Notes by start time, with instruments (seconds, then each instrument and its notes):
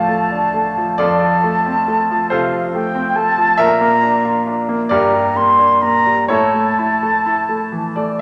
Already playing: grand piano D2 A2 F3 A3 D4 F4 A4 D5 F5, flute A5
0.09 grand piano A3
0.32 grand piano D4
0.54 grand piano A3
0.77 grand piano F3
0.98 grand piano F2 F4 A4 D5, flute A5
1.22 grand piano F3
1.44 grand piano A3
1.66 grand piano C4
1.88 grand piano A3
2.11 grand piano F3
2.30 grand piano C3 F4 A4 C5, flute F5
2.53 grand piano F3
2.74 grand piano A3, flute G5
2.95 grand piano C4
3.16 grand piano A3, flute A5
3.37 grand piano F3
3.58 grand piano A#2 A#4 E5, flute A#5
3.81 grand piano A#3
4.03 grand piano D4
4.25 grand piano F4
4.47 grand piano D4
4.69 grand piano A#3
4.89 grand piano G2 G4 A#4 D5, flute A#5
5.14 grand piano G3
5.36 grand piano A#3, flute C6
5.59 grand piano D4
5.82 grand piano A#3, flute A#5
6.06 grand piano G3
6.28 grand piano A2 E4 A4 C#5, flute A5
6.54 grand piano A3
6.79 grand piano E4
7.03 grand piano A3
7.26 grand piano E4
7.49 grand piano A3
7.72 grand piano E3
7.96 grand piano A3 D5